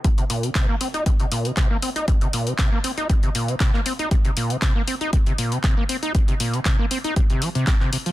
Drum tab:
HH |xxoxx-oxxxoxx-ox|xxoxx-oxxxoxx-ox|xxoxx-oxxxoxx-ox|xxoxx-oxxxoxx-ox|
CP |----x-------x---|----x-------xx--|----x-------x---|----x-------xx--|
BD |o---o---o---o---|o---o---o---o---|o---o---o---o---|o---o---o---o---|